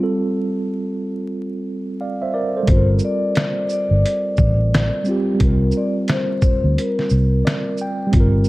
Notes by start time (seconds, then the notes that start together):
Already playing: G3 C4
0.00 F4 A4
2.01 D5 F5
2.22 C5 E5
2.34 A#4 D5
2.57 A4 C5
2.63 G3
2.67 G1 C4 C5, kick, closed hi-hat
2.72 F4
2.76 A#4
2.99 shaker
3.05 D5
3.35 snare, closed hi-hat
3.69 D5, shaker
3.91 G1
4.06 closed hi-hat
4.37 A1, kick, shaker
4.74 snare, closed hi-hat
5.04 G3 C4, shaker
5.08 F4 G4
5.34 G3
5.39 C2 C4, kick, closed hi-hat
5.43 F4 A#4
5.48 A#4
5.71 shaker
5.77 D5
6.08 C5, snare, closed hi-hat
6.42 kick, shaker
6.64 D2
6.78 A#4, closed hi-hat
6.99 snare
7.10 C2, shaker
7.45 D5, snare, closed hi-hat
7.77 shaker
7.82 G5
8.07 G3
8.11 G1 C4, kick, closed hi-hat
8.16 F4
8.20 A#4
8.44 shaker